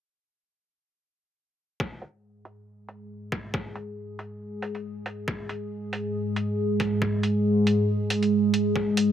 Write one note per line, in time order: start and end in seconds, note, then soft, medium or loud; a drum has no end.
1.80 9.12 G#3 medium
1.80 9.12 G#4 medium
1.80 kick loud
2.02 closed hi-hat medium
2.45 closed hi-hat medium
2.89 closed hi-hat medium
3.32 kick loud
3.32 closed hi-hat medium
3.54 kick loud
3.76 closed hi-hat medium
4.19 closed hi-hat medium
4.62 closed hi-hat medium
4.75 closed hi-hat soft
5.06 closed hi-hat medium
5.28 kick loud
5.49 closed hi-hat medium
5.93 closed hi-hat medium
6.36 closed hi-hat medium
6.80 kick medium
6.80 closed hi-hat medium
7.02 kick loud
7.23 closed hi-hat medium
7.67 closed hi-hat medium
8.10 closed hi-hat medium
8.23 closed hi-hat soft
8.54 closed hi-hat medium
8.76 kick loud
8.97 closed hi-hat medium